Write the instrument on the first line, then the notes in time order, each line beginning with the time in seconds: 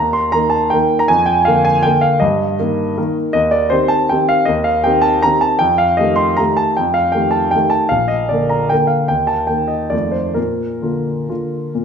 grand piano
Already playing: D#2 A#5
0.13 C6
0.32 D#3 A#3 A#4 A#5
0.50 A5
0.70 D#3 A#3 A#4 G5
0.99 A#5
1.08 F2 G#5
1.26 G5
1.45 D3 A#3 A#4 F5
1.65 G#5
1.83 D3 A#3 A#4 G5
2.01 F5
2.20 G2 D#5
2.59 D#3 A#3 A#4
2.97 D#3 A#3 A#4
3.33 D#2 D#5
3.51 D5
3.70 D#3 C4 G4 C5
3.88 A5
4.09 D#3 C4 G4 G5
4.29 F5
4.45 D#2 D#5
4.64 F5
4.84 D#3 C4 G4 G5
5.02 A5
5.22 D#3 C4 G4 A#5
5.41 A5
5.59 F2 G5
5.78 F5
5.97 D#3 A3 G4 D#5
6.16 C6
6.37 D#3 A3 G4 A#5
6.57 A5
6.77 F2 G5
6.94 F5
7.12 D#3 A3 G4 G5
7.31 A5
7.51 D#3 A3 G4 G5
7.70 A5
7.89 A#1 F5
8.08 D#5
8.29 D3 A#3 A#4 D5
8.49 A#5
8.69 D3 A#3 A#4 G5
8.87 F5
9.08 D#2 G5
9.27 A5
9.47 D#3 A#3 A#4 G5
9.68 D#5
9.90 F2 D#3 A3 F4 D5
10.12 C5
10.34 A#2 A#4
10.82 D3 A#3 F4
11.29 D3 A#3 F4
11.75 A#2